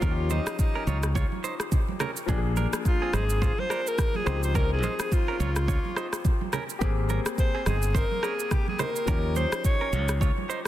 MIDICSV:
0, 0, Header, 1, 6, 480
1, 0, Start_track
1, 0, Tempo, 566038
1, 19, Time_signature, 4, 2, 24, 8
1, 9055, End_track
2, 0, Start_track
2, 0, Title_t, "Alto saxophone"
2, 0, Program_c, 0, 65
2, 0, Note_on_c, 0, 65, 95
2, 265, Note_on_c, 0, 63, 86
2, 278, Note_off_c, 0, 65, 0
2, 502, Note_off_c, 0, 63, 0
2, 505, Note_on_c, 0, 63, 73
2, 948, Note_off_c, 0, 63, 0
2, 2428, Note_on_c, 0, 65, 90
2, 2668, Note_on_c, 0, 68, 96
2, 2681, Note_off_c, 0, 65, 0
2, 3047, Note_on_c, 0, 72, 98
2, 3059, Note_off_c, 0, 68, 0
2, 3288, Note_on_c, 0, 70, 96
2, 3300, Note_off_c, 0, 72, 0
2, 3527, Note_on_c, 0, 68, 94
2, 3540, Note_off_c, 0, 70, 0
2, 3762, Note_off_c, 0, 68, 0
2, 3767, Note_on_c, 0, 72, 98
2, 3867, Note_on_c, 0, 70, 109
2, 3880, Note_off_c, 0, 72, 0
2, 4002, Note_off_c, 0, 70, 0
2, 4007, Note_on_c, 0, 68, 87
2, 4226, Note_off_c, 0, 68, 0
2, 4246, Note_on_c, 0, 68, 86
2, 4346, Note_on_c, 0, 65, 81
2, 4359, Note_off_c, 0, 68, 0
2, 5542, Note_off_c, 0, 65, 0
2, 6268, Note_on_c, 0, 72, 91
2, 6487, Note_off_c, 0, 72, 0
2, 6508, Note_on_c, 0, 68, 82
2, 6748, Note_on_c, 0, 70, 94
2, 6761, Note_off_c, 0, 68, 0
2, 6987, Note_on_c, 0, 68, 86
2, 6999, Note_off_c, 0, 70, 0
2, 7226, Note_on_c, 0, 67, 78
2, 7239, Note_off_c, 0, 68, 0
2, 7361, Note_off_c, 0, 67, 0
2, 7366, Note_on_c, 0, 68, 88
2, 7466, Note_on_c, 0, 70, 100
2, 7479, Note_off_c, 0, 68, 0
2, 7945, Note_on_c, 0, 72, 106
2, 7958, Note_off_c, 0, 70, 0
2, 8179, Note_off_c, 0, 72, 0
2, 8184, Note_on_c, 0, 73, 93
2, 8628, Note_off_c, 0, 73, 0
2, 9055, End_track
3, 0, Start_track
3, 0, Title_t, "Clean electric guitar"
3, 0, Program_c, 1, 27
3, 20, Note_on_c, 1, 70, 106
3, 28, Note_on_c, 1, 61, 85
3, 103, Note_off_c, 1, 70, 0
3, 108, Note_off_c, 1, 61, 0
3, 260, Note_on_c, 1, 72, 81
3, 267, Note_on_c, 1, 63, 62
3, 343, Note_off_c, 1, 72, 0
3, 348, Note_off_c, 1, 63, 0
3, 640, Note_on_c, 1, 70, 71
3, 647, Note_on_c, 1, 61, 53
3, 699, Note_off_c, 1, 70, 0
3, 704, Note_off_c, 1, 61, 0
3, 741, Note_on_c, 1, 73, 74
3, 747, Note_on_c, 1, 65, 57
3, 823, Note_off_c, 1, 73, 0
3, 828, Note_off_c, 1, 65, 0
3, 981, Note_on_c, 1, 73, 81
3, 988, Note_on_c, 1, 65, 61
3, 1063, Note_off_c, 1, 73, 0
3, 1068, Note_off_c, 1, 65, 0
3, 1221, Note_on_c, 1, 72, 80
3, 1228, Note_on_c, 1, 63, 62
3, 1304, Note_off_c, 1, 72, 0
3, 1308, Note_off_c, 1, 63, 0
3, 1701, Note_on_c, 1, 70, 76
3, 1708, Note_on_c, 1, 61, 63
3, 1784, Note_off_c, 1, 70, 0
3, 1788, Note_off_c, 1, 61, 0
3, 1942, Note_on_c, 1, 68, 87
3, 1949, Note_on_c, 1, 62, 68
3, 2024, Note_off_c, 1, 68, 0
3, 2029, Note_off_c, 1, 62, 0
3, 2180, Note_on_c, 1, 70, 79
3, 2186, Note_on_c, 1, 62, 62
3, 2262, Note_off_c, 1, 70, 0
3, 2267, Note_off_c, 1, 62, 0
3, 2560, Note_on_c, 1, 68, 74
3, 2568, Note_on_c, 1, 60, 57
3, 2619, Note_off_c, 1, 68, 0
3, 2625, Note_off_c, 1, 60, 0
3, 2662, Note_on_c, 1, 72, 74
3, 2668, Note_on_c, 1, 63, 61
3, 2744, Note_off_c, 1, 72, 0
3, 2748, Note_off_c, 1, 63, 0
3, 2900, Note_on_c, 1, 72, 79
3, 2907, Note_on_c, 1, 65, 61
3, 2983, Note_off_c, 1, 72, 0
3, 2988, Note_off_c, 1, 65, 0
3, 3140, Note_on_c, 1, 70, 83
3, 3147, Note_on_c, 1, 62, 63
3, 3223, Note_off_c, 1, 70, 0
3, 3228, Note_off_c, 1, 62, 0
3, 3621, Note_on_c, 1, 72, 77
3, 3627, Note_on_c, 1, 63, 64
3, 3703, Note_off_c, 1, 72, 0
3, 3708, Note_off_c, 1, 63, 0
3, 3861, Note_on_c, 1, 70, 106
3, 3868, Note_on_c, 1, 61, 85
3, 3943, Note_off_c, 1, 70, 0
3, 3948, Note_off_c, 1, 61, 0
3, 4101, Note_on_c, 1, 72, 82
3, 4108, Note_on_c, 1, 63, 64
3, 4183, Note_off_c, 1, 72, 0
3, 4189, Note_off_c, 1, 63, 0
3, 4480, Note_on_c, 1, 70, 71
3, 4487, Note_on_c, 1, 61, 52
3, 4539, Note_off_c, 1, 70, 0
3, 4544, Note_off_c, 1, 61, 0
3, 4580, Note_on_c, 1, 73, 73
3, 4588, Note_on_c, 1, 65, 58
3, 4663, Note_off_c, 1, 73, 0
3, 4668, Note_off_c, 1, 65, 0
3, 4820, Note_on_c, 1, 73, 78
3, 4827, Note_on_c, 1, 65, 63
3, 4903, Note_off_c, 1, 73, 0
3, 4908, Note_off_c, 1, 65, 0
3, 5059, Note_on_c, 1, 72, 81
3, 5066, Note_on_c, 1, 63, 65
3, 5142, Note_off_c, 1, 72, 0
3, 5147, Note_off_c, 1, 63, 0
3, 5541, Note_on_c, 1, 70, 77
3, 5547, Note_on_c, 1, 61, 60
3, 5623, Note_off_c, 1, 70, 0
3, 5628, Note_off_c, 1, 61, 0
3, 5779, Note_on_c, 1, 67, 88
3, 5786, Note_on_c, 1, 58, 64
3, 5862, Note_off_c, 1, 67, 0
3, 5867, Note_off_c, 1, 58, 0
3, 6020, Note_on_c, 1, 70, 82
3, 6026, Note_on_c, 1, 61, 62
3, 6102, Note_off_c, 1, 70, 0
3, 6107, Note_off_c, 1, 61, 0
3, 6399, Note_on_c, 1, 68, 75
3, 6406, Note_on_c, 1, 60, 55
3, 6459, Note_off_c, 1, 68, 0
3, 6464, Note_off_c, 1, 60, 0
3, 6500, Note_on_c, 1, 72, 74
3, 6507, Note_on_c, 1, 63, 59
3, 6583, Note_off_c, 1, 72, 0
3, 6587, Note_off_c, 1, 63, 0
3, 6739, Note_on_c, 1, 72, 77
3, 6745, Note_on_c, 1, 63, 61
3, 6822, Note_off_c, 1, 72, 0
3, 6826, Note_off_c, 1, 63, 0
3, 6981, Note_on_c, 1, 70, 83
3, 6988, Note_on_c, 1, 61, 63
3, 7063, Note_off_c, 1, 70, 0
3, 7068, Note_off_c, 1, 61, 0
3, 7461, Note_on_c, 1, 72, 81
3, 7468, Note_on_c, 1, 63, 63
3, 7543, Note_off_c, 1, 72, 0
3, 7548, Note_off_c, 1, 63, 0
3, 7701, Note_on_c, 1, 70, 107
3, 7707, Note_on_c, 1, 61, 83
3, 7783, Note_off_c, 1, 70, 0
3, 7788, Note_off_c, 1, 61, 0
3, 7941, Note_on_c, 1, 72, 78
3, 7947, Note_on_c, 1, 63, 59
3, 8023, Note_off_c, 1, 72, 0
3, 8027, Note_off_c, 1, 63, 0
3, 8320, Note_on_c, 1, 70, 71
3, 8327, Note_on_c, 1, 61, 56
3, 8379, Note_off_c, 1, 70, 0
3, 8384, Note_off_c, 1, 61, 0
3, 8420, Note_on_c, 1, 73, 70
3, 8427, Note_on_c, 1, 65, 60
3, 8502, Note_off_c, 1, 73, 0
3, 8508, Note_off_c, 1, 65, 0
3, 8660, Note_on_c, 1, 73, 75
3, 8667, Note_on_c, 1, 65, 63
3, 8743, Note_off_c, 1, 73, 0
3, 8747, Note_off_c, 1, 65, 0
3, 8900, Note_on_c, 1, 72, 80
3, 8907, Note_on_c, 1, 63, 62
3, 8983, Note_off_c, 1, 72, 0
3, 8987, Note_off_c, 1, 63, 0
3, 9055, End_track
4, 0, Start_track
4, 0, Title_t, "Grand piano"
4, 0, Program_c, 2, 0
4, 0, Control_c, 2, 64, 127
4, 0, Note_on_c, 2, 53, 64
4, 11, Note_on_c, 2, 61, 61
4, 26, Note_on_c, 2, 63, 58
4, 28, Control_c, 2, 64, 0
4, 40, Note_on_c, 2, 65, 59
4, 93, Note_off_c, 2, 65, 0
4, 95, Note_on_c, 2, 67, 72
4, 194, Control_c, 2, 64, 127
4, 1894, Note_off_c, 2, 53, 0
4, 1901, Note_off_c, 2, 61, 0
4, 1908, Note_off_c, 2, 63, 0
4, 1918, Note_on_c, 2, 53, 79
4, 1932, Note_on_c, 2, 58, 74
4, 1943, Note_off_c, 2, 67, 0
4, 1946, Note_on_c, 2, 62, 71
4, 1950, Control_c, 2, 64, 0
4, 1960, Note_on_c, 2, 67, 67
4, 2013, Note_off_c, 2, 67, 0
4, 2015, Note_on_c, 2, 68, 85
4, 2079, Control_c, 2, 64, 127
4, 3574, Note_off_c, 2, 53, 0
4, 3581, Note_off_c, 2, 58, 0
4, 3589, Note_off_c, 2, 62, 0
4, 3598, Note_on_c, 2, 53, 65
4, 3611, Note_on_c, 2, 60, 60
4, 3624, Note_off_c, 2, 68, 0
4, 3625, Note_on_c, 2, 63, 61
4, 3631, Control_c, 2, 64, 0
4, 3640, Note_on_c, 2, 67, 69
4, 3758, Control_c, 2, 64, 127
4, 5494, Note_off_c, 2, 53, 0
4, 5501, Note_off_c, 2, 60, 0
4, 5508, Note_off_c, 2, 63, 0
4, 5515, Note_off_c, 2, 67, 0
4, 5757, Note_on_c, 2, 67, 78
4, 5772, Note_on_c, 2, 58, 72
4, 5785, Note_on_c, 2, 60, 69
4, 5790, Control_c, 2, 64, 0
4, 5800, Note_on_c, 2, 68, 86
4, 5960, Control_c, 2, 64, 127
4, 7654, Note_off_c, 2, 67, 0
4, 7661, Note_off_c, 2, 58, 0
4, 7668, Note_off_c, 2, 60, 0
4, 7675, Note_off_c, 2, 68, 0
4, 7678, Note_on_c, 2, 53, 64
4, 7692, Note_on_c, 2, 61, 61
4, 7706, Note_on_c, 2, 63, 59
4, 7709, Control_c, 2, 64, 0
4, 7720, Note_on_c, 2, 67, 76
4, 7871, Control_c, 2, 64, 127
4, 9055, Note_off_c, 2, 53, 0
4, 9055, Note_off_c, 2, 61, 0
4, 9055, Note_off_c, 2, 63, 0
4, 9055, Note_off_c, 2, 67, 0
4, 9055, End_track
5, 0, Start_track
5, 0, Title_t, "Fingered electric bass"
5, 0, Program_c, 3, 33
5, 19, Note_on_c, 3, 39, 100
5, 327, Note_off_c, 3, 39, 0
5, 737, Note_on_c, 3, 37, 91
5, 1046, Note_off_c, 3, 37, 0
5, 1938, Note_on_c, 3, 34, 101
5, 2247, Note_off_c, 3, 34, 0
5, 2658, Note_on_c, 3, 32, 82
5, 2967, Note_off_c, 3, 32, 0
5, 3619, Note_on_c, 3, 37, 87
5, 4123, Note_off_c, 3, 37, 0
5, 4580, Note_on_c, 3, 37, 93
5, 4888, Note_off_c, 3, 37, 0
5, 5779, Note_on_c, 3, 32, 105
5, 6087, Note_off_c, 3, 32, 0
5, 6499, Note_on_c, 3, 31, 91
5, 6808, Note_off_c, 3, 31, 0
5, 7698, Note_on_c, 3, 39, 103
5, 8007, Note_off_c, 3, 39, 0
5, 8418, Note_on_c, 3, 37, 91
5, 8727, Note_off_c, 3, 37, 0
5, 9055, End_track
6, 0, Start_track
6, 0, Title_t, "Drums"
6, 13, Note_on_c, 9, 64, 78
6, 18, Note_on_c, 9, 36, 113
6, 19, Note_on_c, 9, 82, 67
6, 98, Note_off_c, 9, 64, 0
6, 103, Note_off_c, 9, 36, 0
6, 103, Note_off_c, 9, 82, 0
6, 254, Note_on_c, 9, 82, 48
6, 259, Note_on_c, 9, 63, 67
6, 339, Note_off_c, 9, 82, 0
6, 344, Note_off_c, 9, 63, 0
6, 397, Note_on_c, 9, 37, 116
6, 397, Note_on_c, 9, 82, 85
6, 482, Note_off_c, 9, 37, 0
6, 482, Note_off_c, 9, 82, 0
6, 499, Note_on_c, 9, 36, 97
6, 501, Note_on_c, 9, 82, 73
6, 584, Note_off_c, 9, 36, 0
6, 586, Note_off_c, 9, 82, 0
6, 740, Note_on_c, 9, 82, 57
6, 741, Note_on_c, 9, 63, 71
6, 825, Note_off_c, 9, 82, 0
6, 826, Note_off_c, 9, 63, 0
6, 874, Note_on_c, 9, 82, 74
6, 877, Note_on_c, 9, 37, 98
6, 959, Note_off_c, 9, 82, 0
6, 962, Note_off_c, 9, 37, 0
6, 977, Note_on_c, 9, 36, 113
6, 979, Note_on_c, 9, 64, 79
6, 986, Note_on_c, 9, 82, 68
6, 1062, Note_off_c, 9, 36, 0
6, 1063, Note_off_c, 9, 64, 0
6, 1071, Note_off_c, 9, 82, 0
6, 1119, Note_on_c, 9, 63, 70
6, 1204, Note_off_c, 9, 63, 0
6, 1224, Note_on_c, 9, 82, 53
6, 1308, Note_off_c, 9, 82, 0
6, 1355, Note_on_c, 9, 37, 96
6, 1359, Note_on_c, 9, 82, 78
6, 1440, Note_off_c, 9, 37, 0
6, 1444, Note_off_c, 9, 82, 0
6, 1456, Note_on_c, 9, 64, 74
6, 1457, Note_on_c, 9, 82, 72
6, 1458, Note_on_c, 9, 36, 93
6, 1541, Note_off_c, 9, 64, 0
6, 1542, Note_off_c, 9, 36, 0
6, 1542, Note_off_c, 9, 82, 0
6, 1597, Note_on_c, 9, 63, 69
6, 1682, Note_off_c, 9, 63, 0
6, 1697, Note_on_c, 9, 37, 95
6, 1697, Note_on_c, 9, 82, 59
6, 1698, Note_on_c, 9, 64, 71
6, 1782, Note_off_c, 9, 37, 0
6, 1782, Note_off_c, 9, 64, 0
6, 1782, Note_off_c, 9, 82, 0
6, 1837, Note_on_c, 9, 82, 66
6, 1922, Note_off_c, 9, 82, 0
6, 1933, Note_on_c, 9, 64, 76
6, 1939, Note_on_c, 9, 36, 114
6, 1939, Note_on_c, 9, 82, 72
6, 2018, Note_off_c, 9, 64, 0
6, 2023, Note_off_c, 9, 36, 0
6, 2024, Note_off_c, 9, 82, 0
6, 2175, Note_on_c, 9, 82, 49
6, 2178, Note_on_c, 9, 63, 68
6, 2259, Note_off_c, 9, 82, 0
6, 2263, Note_off_c, 9, 63, 0
6, 2317, Note_on_c, 9, 37, 107
6, 2317, Note_on_c, 9, 82, 88
6, 2402, Note_off_c, 9, 37, 0
6, 2402, Note_off_c, 9, 82, 0
6, 2419, Note_on_c, 9, 36, 92
6, 2421, Note_on_c, 9, 82, 77
6, 2504, Note_off_c, 9, 36, 0
6, 2505, Note_off_c, 9, 82, 0
6, 2658, Note_on_c, 9, 37, 97
6, 2660, Note_on_c, 9, 63, 72
6, 2660, Note_on_c, 9, 82, 55
6, 2743, Note_off_c, 9, 37, 0
6, 2745, Note_off_c, 9, 63, 0
6, 2745, Note_off_c, 9, 82, 0
6, 2795, Note_on_c, 9, 82, 72
6, 2880, Note_off_c, 9, 82, 0
6, 2898, Note_on_c, 9, 36, 118
6, 2898, Note_on_c, 9, 64, 83
6, 2907, Note_on_c, 9, 82, 69
6, 2983, Note_off_c, 9, 36, 0
6, 2983, Note_off_c, 9, 64, 0
6, 2991, Note_off_c, 9, 82, 0
6, 3038, Note_on_c, 9, 63, 67
6, 3123, Note_off_c, 9, 63, 0
6, 3138, Note_on_c, 9, 37, 83
6, 3145, Note_on_c, 9, 82, 51
6, 3223, Note_off_c, 9, 37, 0
6, 3230, Note_off_c, 9, 82, 0
6, 3281, Note_on_c, 9, 82, 78
6, 3365, Note_off_c, 9, 82, 0
6, 3375, Note_on_c, 9, 64, 71
6, 3379, Note_on_c, 9, 36, 90
6, 3379, Note_on_c, 9, 82, 74
6, 3380, Note_on_c, 9, 37, 91
6, 3460, Note_off_c, 9, 64, 0
6, 3463, Note_off_c, 9, 36, 0
6, 3464, Note_off_c, 9, 82, 0
6, 3465, Note_off_c, 9, 37, 0
6, 3517, Note_on_c, 9, 63, 71
6, 3602, Note_off_c, 9, 63, 0
6, 3616, Note_on_c, 9, 64, 68
6, 3618, Note_on_c, 9, 37, 92
6, 3618, Note_on_c, 9, 82, 57
6, 3701, Note_off_c, 9, 64, 0
6, 3703, Note_off_c, 9, 37, 0
6, 3703, Note_off_c, 9, 82, 0
6, 3758, Note_on_c, 9, 82, 68
6, 3843, Note_off_c, 9, 82, 0
6, 3853, Note_on_c, 9, 64, 78
6, 3859, Note_on_c, 9, 36, 107
6, 3860, Note_on_c, 9, 82, 71
6, 3938, Note_off_c, 9, 64, 0
6, 3944, Note_off_c, 9, 36, 0
6, 3945, Note_off_c, 9, 82, 0
6, 4095, Note_on_c, 9, 82, 48
6, 4099, Note_on_c, 9, 63, 69
6, 4180, Note_off_c, 9, 82, 0
6, 4184, Note_off_c, 9, 63, 0
6, 4237, Note_on_c, 9, 37, 115
6, 4237, Note_on_c, 9, 82, 85
6, 4322, Note_off_c, 9, 37, 0
6, 4322, Note_off_c, 9, 82, 0
6, 4340, Note_on_c, 9, 36, 91
6, 4341, Note_on_c, 9, 82, 73
6, 4424, Note_off_c, 9, 36, 0
6, 4426, Note_off_c, 9, 82, 0
6, 4581, Note_on_c, 9, 82, 57
6, 4582, Note_on_c, 9, 63, 75
6, 4666, Note_off_c, 9, 82, 0
6, 4667, Note_off_c, 9, 63, 0
6, 4715, Note_on_c, 9, 82, 74
6, 4718, Note_on_c, 9, 37, 92
6, 4800, Note_off_c, 9, 82, 0
6, 4803, Note_off_c, 9, 37, 0
6, 4818, Note_on_c, 9, 36, 115
6, 4821, Note_on_c, 9, 64, 82
6, 4827, Note_on_c, 9, 82, 71
6, 4903, Note_off_c, 9, 36, 0
6, 4905, Note_off_c, 9, 64, 0
6, 4911, Note_off_c, 9, 82, 0
6, 4960, Note_on_c, 9, 63, 68
6, 5045, Note_off_c, 9, 63, 0
6, 5058, Note_on_c, 9, 37, 84
6, 5065, Note_on_c, 9, 82, 51
6, 5143, Note_off_c, 9, 37, 0
6, 5150, Note_off_c, 9, 82, 0
6, 5196, Note_on_c, 9, 37, 95
6, 5200, Note_on_c, 9, 82, 78
6, 5281, Note_off_c, 9, 37, 0
6, 5285, Note_off_c, 9, 82, 0
6, 5296, Note_on_c, 9, 64, 69
6, 5298, Note_on_c, 9, 36, 91
6, 5298, Note_on_c, 9, 82, 70
6, 5381, Note_off_c, 9, 64, 0
6, 5383, Note_off_c, 9, 36, 0
6, 5383, Note_off_c, 9, 82, 0
6, 5438, Note_on_c, 9, 63, 72
6, 5522, Note_off_c, 9, 63, 0
6, 5537, Note_on_c, 9, 37, 94
6, 5537, Note_on_c, 9, 82, 55
6, 5540, Note_on_c, 9, 64, 73
6, 5622, Note_off_c, 9, 37, 0
6, 5622, Note_off_c, 9, 82, 0
6, 5624, Note_off_c, 9, 64, 0
6, 5677, Note_on_c, 9, 82, 65
6, 5762, Note_off_c, 9, 82, 0
6, 5775, Note_on_c, 9, 64, 79
6, 5779, Note_on_c, 9, 36, 109
6, 5779, Note_on_c, 9, 82, 71
6, 5860, Note_off_c, 9, 64, 0
6, 5863, Note_off_c, 9, 36, 0
6, 5864, Note_off_c, 9, 82, 0
6, 6015, Note_on_c, 9, 82, 50
6, 6021, Note_on_c, 9, 63, 71
6, 6099, Note_off_c, 9, 82, 0
6, 6106, Note_off_c, 9, 63, 0
6, 6157, Note_on_c, 9, 37, 115
6, 6157, Note_on_c, 9, 82, 85
6, 6242, Note_off_c, 9, 37, 0
6, 6242, Note_off_c, 9, 82, 0
6, 6259, Note_on_c, 9, 36, 95
6, 6261, Note_on_c, 9, 82, 72
6, 6344, Note_off_c, 9, 36, 0
6, 6345, Note_off_c, 9, 82, 0
6, 6498, Note_on_c, 9, 37, 95
6, 6500, Note_on_c, 9, 82, 60
6, 6503, Note_on_c, 9, 63, 76
6, 6583, Note_off_c, 9, 37, 0
6, 6585, Note_off_c, 9, 82, 0
6, 6588, Note_off_c, 9, 63, 0
6, 6634, Note_on_c, 9, 82, 71
6, 6719, Note_off_c, 9, 82, 0
6, 6738, Note_on_c, 9, 36, 111
6, 6740, Note_on_c, 9, 64, 84
6, 6747, Note_on_c, 9, 82, 72
6, 6823, Note_off_c, 9, 36, 0
6, 6825, Note_off_c, 9, 64, 0
6, 6831, Note_off_c, 9, 82, 0
6, 6881, Note_on_c, 9, 63, 68
6, 6966, Note_off_c, 9, 63, 0
6, 6978, Note_on_c, 9, 37, 80
6, 6985, Note_on_c, 9, 82, 51
6, 7063, Note_off_c, 9, 37, 0
6, 7069, Note_off_c, 9, 82, 0
6, 7120, Note_on_c, 9, 82, 78
6, 7205, Note_off_c, 9, 82, 0
6, 7217, Note_on_c, 9, 64, 69
6, 7218, Note_on_c, 9, 36, 94
6, 7218, Note_on_c, 9, 82, 70
6, 7219, Note_on_c, 9, 37, 93
6, 7302, Note_off_c, 9, 64, 0
6, 7303, Note_off_c, 9, 36, 0
6, 7303, Note_off_c, 9, 82, 0
6, 7304, Note_off_c, 9, 37, 0
6, 7359, Note_on_c, 9, 63, 75
6, 7444, Note_off_c, 9, 63, 0
6, 7457, Note_on_c, 9, 37, 93
6, 7457, Note_on_c, 9, 82, 58
6, 7460, Note_on_c, 9, 64, 75
6, 7542, Note_off_c, 9, 37, 0
6, 7542, Note_off_c, 9, 82, 0
6, 7544, Note_off_c, 9, 64, 0
6, 7597, Note_on_c, 9, 82, 66
6, 7682, Note_off_c, 9, 82, 0
6, 7693, Note_on_c, 9, 64, 78
6, 7698, Note_on_c, 9, 36, 118
6, 7698, Note_on_c, 9, 82, 69
6, 7778, Note_off_c, 9, 64, 0
6, 7783, Note_off_c, 9, 36, 0
6, 7783, Note_off_c, 9, 82, 0
6, 7934, Note_on_c, 9, 82, 51
6, 7939, Note_on_c, 9, 63, 68
6, 8019, Note_off_c, 9, 82, 0
6, 8024, Note_off_c, 9, 63, 0
6, 8076, Note_on_c, 9, 82, 83
6, 8077, Note_on_c, 9, 37, 116
6, 8161, Note_off_c, 9, 37, 0
6, 8161, Note_off_c, 9, 82, 0
6, 8179, Note_on_c, 9, 36, 96
6, 8180, Note_on_c, 9, 82, 74
6, 8264, Note_off_c, 9, 36, 0
6, 8265, Note_off_c, 9, 82, 0
6, 8420, Note_on_c, 9, 82, 56
6, 8422, Note_on_c, 9, 63, 72
6, 8505, Note_off_c, 9, 82, 0
6, 8507, Note_off_c, 9, 63, 0
6, 8553, Note_on_c, 9, 82, 75
6, 8556, Note_on_c, 9, 37, 97
6, 8638, Note_off_c, 9, 82, 0
6, 8641, Note_off_c, 9, 37, 0
6, 8657, Note_on_c, 9, 36, 112
6, 8660, Note_on_c, 9, 64, 82
6, 8667, Note_on_c, 9, 82, 75
6, 8742, Note_off_c, 9, 36, 0
6, 8744, Note_off_c, 9, 64, 0
6, 8751, Note_off_c, 9, 82, 0
6, 8800, Note_on_c, 9, 63, 70
6, 8885, Note_off_c, 9, 63, 0
6, 8905, Note_on_c, 9, 82, 52
6, 8989, Note_off_c, 9, 82, 0
6, 9055, End_track
0, 0, End_of_file